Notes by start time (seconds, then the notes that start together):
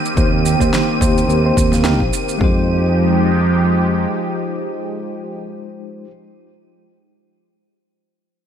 Already playing: D#3 A#3 C4 G4 D#7
0.05 shaker
0.16 D#2 A#3 C4 D#4 G4 C5, kick, shaker
0.46 shaker
0.59 D#2 A#3 C4 D#4 G4 C5, kick, shaker
0.74 snare, shaker
1.00 D#2 A#3 C4 D#4 G4 C5, kick, shaker
1.18 shaker
1.29 D#2, shaker
1.44 A#3 C4 D#4 G4 C5
1.57 D#2, kick, shaker
1.71 A#3 C4 D#4 G4 F5, snare, shaker
1.83 A#3 C4 D#4 G4 F5, snare, shaker
2.00 A#1, kick
2.13 shaker
2.29 shaker
2.37 F2 F3 G#3 D#4 F4 G4, kick
2.42 G#3 G4 C5